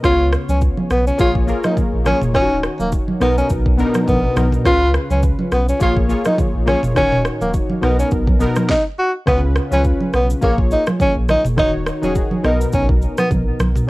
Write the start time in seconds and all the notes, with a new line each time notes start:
0.03 C#2 C#3 B3 F4 C#5, kick, cross-stick, shaker
0.33 cross-stick, shaker
0.49 C#2 C#4, high conga, shaker
0.61 kick, shaker
0.77 high conga
0.90 B1 B3, cross-stick, shaker
1.07 C#4, shaker
1.18 A#1 A#3 F4 G#4 C#5, kick, shaker
1.35 kick
1.47 A#3 F4 G#4 A#4, shaker
1.64 D#4, cross-stick, high conga, shaker
1.77 kick, high conga, low conga, shaker
1.93 A#1
2.05 A#3 C#4 F4 G#4 C#5, cross-stick, high conga, low conga, shaker
2.21 F1, mid tom, shaker
2.33 D#1 D#3 C#4 D#4 F4 C#5, kick, cross-stick, shaker
2.42 F#4
2.63 cross-stick, shaker
2.79 D#1 A#3, high conga, shaker
2.92 kick, shaker
3.08 high conga
3.20 B1 B2 B3 D#4 A#4, cross-stick, shaker
3.38 C#4, shaker
3.50 B1, kick, shaker
3.66 kick
3.78 B2 B3 D4 A#4, shaker
3.86 D#4
3.94 cross-stick, high conga, shaker
4.08 A#1 B3, kick, high conga, low conga, shaker
4.35 B1 B2 B3 D#4 A#4, cross-stick, high conga, low conga, shaker
4.52 mid tom, shaker
4.64 C#2 C#3 C#4 F4 B4, kick, cross-stick, shaker
4.94 cross-stick, shaker
5.10 C#2 C#4, high conga, shaker
5.23 kick, shaker
5.39 high conga
5.52 B1 B3, cross-stick, shaker
5.69 C#4, shaker
5.79 A#1 A#3 F4 G#4 C#5, kick, shaker
5.97 kick
6.08 A#3 F4 G#4 C#5, shaker
6.25 D#4, cross-stick, high conga, shaker
6.38 kick, high conga, low conga, shaker
6.54 A#1
6.66 A#3 C#4 F4 G#4 C#5, cross-stick, high conga, low conga, shaker
6.83 F1, mid tom, shaker
6.95 D#1 D#3 C#4 D#4 F#4 C#5, kick, cross-stick, low conga, shaker
7.12 mid tom
7.25 cross-stick, shaker
7.41 D#1 A#3, high conga, shaker
7.54 kick, shaker
7.70 high conga
7.81 B1 B2 B3 D#4 A#4, cross-stick, shaker
7.99 C#4, shaker
8.11 B1, kick, shaker
8.27 kick, high conga
8.39 B2 B3 D#4 A#4, shaker
8.56 cross-stick, high conga, shaker
8.69 D#4, kick, snare
8.99 F#4
9.26 C#2 C#3 B3 C#4 F4 B4, kick, cross-stick, low conga, shaker
9.56 cross-stick, shaker
9.71 C#2 C#3 C#4 F4 B4, high conga, shaker
9.84 kick, shaker
10.00 high conga
10.13 B1 B3, cross-stick, shaker
10.30 shaker
10.41 A#1 A#3 F4 G#4 C#5, kick, shaker
10.58 kick
10.71 D#4, shaker
10.87 cross-stick, high conga, shaker
11.00 C#4, kick, high conga, low conga, shaker
11.16 A#1
11.29 D#4, cross-stick, high conga, low conga, shaker
11.45 F1, mid tom, shaker
11.57 D#1 D#3 D#4 F#4 C#5, kick, cross-stick, low conga, shaker
11.87 cross-stick, shaker
12.01 D#1 D#3 C#4 D#4 F#4 G#4, high conga, shaker
12.15 kick, shaker
12.31 high conga
12.43 B1 B2 B3 D#4 A#4, cross-stick, shaker
12.61 shaker
12.73 B1 C#4, kick, shaker
12.89 kick
13.02 shaker
13.18 B3, cross-stick, high conga, shaker
13.31 A#1, kick, high conga, low conga, shaker
13.60 B1, cross-stick, high conga, low conga, shaker
13.75 mid tom, shaker